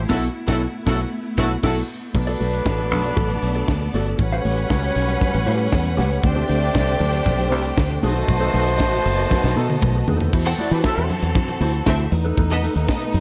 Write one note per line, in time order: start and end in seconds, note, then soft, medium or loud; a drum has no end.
0.00 2.11 E4 medium
0.09 0.27 B1 loud
0.09 0.23 F#3 loud
0.09 2.13 A3 medium
0.09 0.27 B3 loud
0.09 2.13 B3 medium
0.09 0.23 E4 loud
0.09 0.27 E4 loud
0.09 0.27 F#4 medium
0.09 0.23 A4 loud
0.09 0.28 A4 loud
0.09 0.27 F#5 medium
0.09 kick medium
0.09 snare medium
0.09 crash medium
0.48 0.66 B1 loud
0.48 0.61 F#3 medium
0.48 0.66 B3 loud
0.48 0.61 E4 medium
0.48 0.66 E4 loud
0.48 0.65 F#4 medium
0.48 0.65 A4 medium
0.48 0.61 A4 medium
0.48 0.65 F#5 loud
0.48 kick loud
0.48 snare loud
0.86 1.04 B1 medium
0.86 1.00 F#3 medium
0.86 1.04 B3 loud
0.86 1.04 E4 loud
0.86 1.00 E4 medium
0.86 1.04 F#4 medium
0.86 1.00 A4 medium
0.86 1.04 A4 loud
0.86 1.04 F#5 medium
0.86 kick loud
0.86 snare loud
1.38 1.55 B1 loud
1.38 1.51 F#3 loud
1.38 1.56 B3 medium
1.38 1.51 E4 loud
1.38 1.56 E4 medium
1.38 1.55 F#4 medium
1.38 1.51 A4 loud
1.38 1.55 B4 medium
1.38 1.55 F#5 medium
1.38 kick loud
1.38 snare medium
1.63 1.81 B1 medium
1.63 1.77 F#3 medium
1.63 1.82 B3 medium
1.63 1.77 E4 loud
1.63 1.81 E4 medium
1.63 1.81 F#4 medium
1.63 1.81 A4 loud
1.63 1.77 A4 loud
1.63 1.81 F#5 medium
1.63 kick loud
1.63 snare loud
1.63 crash medium
2.14 2.34 B1 loud
2.14 3.90 F#3 medium
2.14 4.18 A3 medium
2.14 4.16 B3 medium
2.14 4.18 B3 medium
2.14 3.90 D4 medium
2.14 4.17 D4 medium
2.14 4.16 A4 medium
2.14 3.90 B4 medium
2.14 4.16 D5 medium
2.14 muted clean electric guitar stroke soft
2.14 kick loud
2.14 crash medium
2.14 muted conga soft
2.27 2.39 F#4 medium
2.27 2.40 A4 medium
2.27 2.40 D5 loud
2.27 closed hi-hat soft
2.40 2.60 B1 medium
2.40 2.54 F#4 medium
2.40 2.53 A4 medium
2.40 2.52 D5 medium
2.40 open hi-hat medium
2.40 muted conga medium
2.53 muted clean electric guitar stroke soft
2.53 closed hi-hat soft
2.65 2.91 A1 medium
2.65 muted clean electric guitar stroke soft
2.65 kick loud
2.65 snare loud
2.65 high conga medium
2.78 muted clean electric guitar stroke soft
2.78 closed hi-hat soft
2.91 3.11 B1 medium
2.91 open hi-hat medium
2.91 low conga medium
3.04 muted clean electric guitar stroke soft
3.04 closed hi-hat soft
3.17 3.36 A1 loud
3.17 3.35 F#4 medium
3.17 3.30 A4 medium
3.17 3.29 D5 medium
3.17 kick loud
3.17 closed hi-hat medium
3.17 low conga medium
3.30 muted clean electric guitar stroke soft
3.30 closed hi-hat soft
3.42 3.62 B1 medium
3.42 muted clean electric guitar stroke soft
3.42 open hi-hat medium
3.55 3.67 F#4 medium
3.55 3.68 A4 medium
3.55 3.68 D5 medium
3.55 closed hi-hat soft
3.68 3.88 D2 medium
3.68 muted clean electric guitar stroke soft
3.68 kick loud
3.68 snare loud
3.68 high conga medium
3.81 muted clean electric guitar stroke soft
3.81 closed hi-hat soft
3.94 4.13 G1 medium
3.94 4.07 F#4 medium
3.94 4.06 A4 medium
3.94 4.06 D5 medium
3.94 snare soft
3.94 open hi-hat medium
3.94 high conga medium
4.06 4.19 F#4 soft
4.06 4.20 A4 medium
4.06 4.20 D5 medium
4.06 closed hi-hat soft
4.19 4.39 A1 loud
4.19 6.22 G3 medium
4.19 5.95 G3 medium
4.19 10.29 A3 medium
4.19 6.20 C#4 medium
4.19 6.22 C#4 medium
4.19 5.95 F#4 medium
4.19 6.20 B4 medium
4.19 5.95 C#5 medium
4.19 6.20 F#5 medium
4.19 muted clean electric guitar stroke soft
4.19 kick loud
4.19 closed hi-hat medium
4.19 muted conga soft
4.31 4.44 G4 medium
4.31 4.44 C#5 medium
4.31 4.45 F#5 loud
4.31 closed hi-hat soft
4.45 4.64 A1 medium
4.45 4.59 G4 medium
4.45 4.57 C#5 medium
4.45 4.56 F#5 medium
4.45 open hi-hat medium
4.45 muted conga medium
4.57 muted clean electric guitar stroke soft
4.57 closed hi-hat medium
4.70 4.90 C#2 medium
4.70 muted clean electric guitar stroke soft
4.70 kick loud
4.70 snare loud
4.70 high conga medium
4.82 muted clean electric guitar stroke soft
4.82 closed hi-hat soft
4.95 5.15 B1 loud
4.95 open hi-hat medium
5.08 muted clean electric guitar stroke soft
5.08 closed hi-hat medium
5.21 kick loud
5.21 closed hi-hat medium
5.21 low conga medium
5.34 5.44 A1 medium
5.34 muted clean electric guitar stroke medium
5.34 closed hi-hat medium
5.46 5.67 A2 loud
5.46 5.67 G4 medium
5.46 5.59 C#5 medium
5.46 5.58 F#5 medium
5.46 open hi-hat medium
5.46 muted conga soft
5.59 muted clean electric guitar stroke soft
5.59 closed hi-hat soft
5.72 6.00 E2 medium
5.72 muted clean electric guitar stroke soft
5.72 kick loud
5.72 snare loud
5.72 high conga medium
5.85 muted clean electric guitar stroke soft
5.85 closed hi-hat soft
5.97 6.18 C#2 medium
5.97 6.10 G4 medium
5.97 6.10 C#5 medium
5.97 6.09 F#5 medium
5.97 snare soft
5.97 open hi-hat medium
5.97 high conga medium
6.10 6.22 G4 medium
6.10 6.23 C#5 medium
6.10 6.25 F#5 medium
6.10 closed hi-hat soft
6.22 6.43 D2 loud
6.22 8.01 D3 medium
6.22 7.74 A3 medium
6.22 8.01 C4 medium
6.22 8.00 D4 medium
6.22 8.01 G4 loud
6.22 7.74 G4 medium
6.22 7.99 C5 medium
6.22 7.74 D5 medium
6.22 8.00 G5 loud
6.22 muted clean electric guitar stroke soft
6.22 kick loud
6.22 closed hi-hat medium
6.22 muted conga medium
6.35 6.47 D4 medium
6.35 6.48 G4 medium
6.35 6.48 C5 medium
6.35 closed hi-hat soft
6.48 6.69 D2 medium
6.48 6.63 D4 medium
6.48 6.61 G4 medium
6.48 6.59 C5 medium
6.48 open hi-hat soft
6.48 muted conga medium
6.61 muted clean electric guitar stroke soft
6.61 closed hi-hat soft
6.74 6.95 C2 loud
6.74 muted clean electric guitar stroke soft
6.74 kick loud
6.74 snare loud
6.74 high conga medium
6.86 muted clean electric guitar stroke medium
6.86 closed hi-hat soft
7.00 7.20 D2 loud
7.00 open hi-hat medium
7.00 low conga medium
7.13 muted clean electric guitar stroke soft
7.13 closed hi-hat soft
7.26 7.52 B1 loud
7.26 kick loud
7.26 closed hi-hat medium
7.26 low conga medium
7.39 muted clean electric guitar stroke soft
7.39 closed hi-hat medium
7.51 7.71 C2 loud
7.51 7.69 D4 medium
7.51 7.64 G4 medium
7.51 7.63 C5 loud
7.51 open hi-hat medium
7.51 muted conga soft
7.64 muted clean electric guitar stroke medium
7.64 closed hi-hat soft
7.77 7.97 D2 loud
7.77 muted clean electric guitar stroke soft
7.77 kick loud
7.77 snare loud
7.77 high conga medium
7.90 muted clean electric guitar stroke soft
7.90 closed hi-hat medium
8.03 8.23 B1 medium
8.03 10.31 D#3 medium
8.03 10.04 A3 loud
8.03 10.31 B3 medium
8.03 8.16 D#4 loud
8.03 10.04 F#4 medium
8.03 10.29 F#4 medium
8.03 8.15 A4 medium
8.03 10.03 C5 loud
8.03 8.14 C5 loud
8.03 10.29 D#5 medium
8.03 10.29 A5 loud
8.03 open hi-hat medium
8.03 high conga medium
8.16 8.27 D#4 medium
8.16 8.28 A4 medium
8.16 8.28 C5 medium
8.16 closed hi-hat soft
8.28 8.48 B1 loud
8.28 muted clean electric guitar stroke soft
8.28 kick loud
8.28 closed hi-hat medium
8.28 muted conga medium
8.40 8.52 D#4 medium
8.40 8.53 A4 medium
8.40 8.53 C5 medium
8.40 closed hi-hat soft
8.54 8.80 B1 loud
8.54 8.68 D#4 medium
8.54 8.66 A4 medium
8.54 8.65 C5 medium
8.54 open hi-hat medium
8.54 muted conga medium
8.67 closed hi-hat medium
8.79 8.99 A1 loud
8.79 muted clean electric guitar stroke soft
8.79 kick loud
8.79 snare loud
8.79 high conga medium
8.92 muted clean electric guitar stroke soft
8.92 closed hi-hat soft
9.05 9.25 F#1 loud
9.05 open hi-hat medium
9.18 muted clean electric guitar stroke soft
9.18 closed hi-hat soft
9.30 kick loud
9.30 snare medium
9.30 low conga medium
9.43 9.54 B1 loud
9.43 muted clean electric guitar stroke medium
9.43 snare medium
9.56 9.76 B2 loud
9.56 9.74 D#4 medium
9.56 9.69 A4 medium
9.56 9.68 C5 medium
9.56 muted conga soft
9.69 muted clean electric guitar stroke medium
9.69 high tom medium
9.82 10.02 B1 loud
9.82 muted clean electric guitar stroke soft
9.82 kick loud
9.82 mid tom loud
9.82 high conga medium
9.95 muted clean electric guitar stroke medium
10.08 10.27 D#2 medium
10.08 10.21 D#4 medium
10.08 10.20 A4 medium
10.08 10.20 C5 medium
10.08 floor tom medium
10.08 high conga medium
10.20 10.33 D#4 medium
10.20 10.34 A4 medium
10.20 10.34 C5 medium
10.20 floor tom loud
10.33 10.53 E2 loud
10.33 12.11 E3 medium
10.33 12.11 C4 medium
10.33 10.51 E4 medium
10.33 12.11 F#4 medium
10.33 10.51 F#4 medium
10.33 12.10 A4 medium
10.33 10.52 C5 medium
10.33 kick loud
10.33 crash loud
10.33 muted conga medium
10.45 10.57 C4 loud
10.45 10.56 A4 medium
10.45 10.57 F#5 loud
10.45 closed hi-hat soft
10.58 10.69 A3 medium
10.58 10.73 E4 medium
10.58 10.69 F#4 medium
10.58 10.72 F#4 medium
10.58 10.69 D5 medium
10.58 10.72 D5 medium
10.58 open hi-hat medium
10.58 muted conga medium
10.71 10.81 E3 loud
10.71 10.82 B3 medium
10.71 10.84 E4 soft
10.71 10.85 F#4 medium
10.71 10.82 G4 medium
10.71 10.82 B4 medium
10.71 10.85 C5 medium
10.71 closed hi-hat soft
10.84 11.05 F#3 medium
10.84 10.95 C4 medium
10.84 11.05 E4 medium
10.84 10.95 A4 medium
10.84 11.05 A4 loud
10.84 10.95 E5 medium
10.84 muted clean electric guitar stroke soft
10.84 kick loud
10.84 snare loud
10.84 high conga loud
10.96 11.07 E2 medium
10.96 muted clean electric guitar stroke soft
10.96 closed hi-hat soft
11.09 open hi-hat medium
11.09 low conga medium
11.22 11.32 E2 loud
11.22 muted clean electric guitar stroke soft
11.22 closed hi-hat medium
11.35 muted clean electric guitar stroke medium
11.35 kick loud
11.35 closed hi-hat medium
11.35 low conga medium
11.48 muted clean electric guitar stroke medium
11.48 closed hi-hat medium
11.61 11.80 D2 loud
11.61 11.79 E4 medium
11.61 11.74 F#4 loud
11.61 11.73 C5 medium
11.61 open hi-hat medium
11.73 muted clean electric guitar stroke medium
11.73 closed hi-hat soft
11.86 12.06 D2 loud
11.86 12.09 C4 medium
11.86 12.04 E4 medium
11.86 12.00 F#4 medium
11.86 12.09 A4 medium
11.86 11.99 C5 medium
11.86 12.08 E5 loud
11.86 kick loud
11.86 snare loud
11.86 high conga medium
11.99 muted clean electric guitar stroke medium
11.99 closed hi-hat soft
12.11 12.31 E2 loud
12.11 13.20 A3 medium
12.11 13.20 B3 medium
12.11 13.20 D#4 loud
12.11 muted clean electric guitar stroke soft
12.11 open hi-hat medium
12.11 high conga medium
12.25 12.36 D#4 medium
12.25 12.37 A4 medium
12.25 12.37 B4 medium
12.25 closed hi-hat soft
12.37 12.67 E2 loud
12.37 12.55 D#4 loud
12.37 12.55 A4 medium
12.37 12.56 B4 loud
12.37 kick loud
12.37 closed hi-hat medium
12.37 muted conga medium
12.50 12.62 B3 loud
12.50 12.61 A4 medium
12.50 12.61 D#5 loud
12.50 closed hi-hat medium
12.63 12.76 D#4 medium
12.63 12.75 A4 medium
12.63 12.74 B4 medium
12.63 open hi-hat medium
12.63 muted conga medium
12.75 12.85 D#2 loud
12.75 12.87 D#4 medium
12.75 12.88 A4 medium
12.75 12.88 B4 medium
12.75 closed hi-hat medium
12.88 12.99 B3 medium
12.88 12.99 A4 medium
12.88 12.99 D#5 medium
12.88 muted clean electric guitar stroke soft
12.88 kick loud
12.88 snare loud
12.88 high conga loud
13.01 muted clean electric guitar stroke soft
13.01 closed hi-hat soft
13.14 13.20 F#2 loud
13.14 open hi-hat medium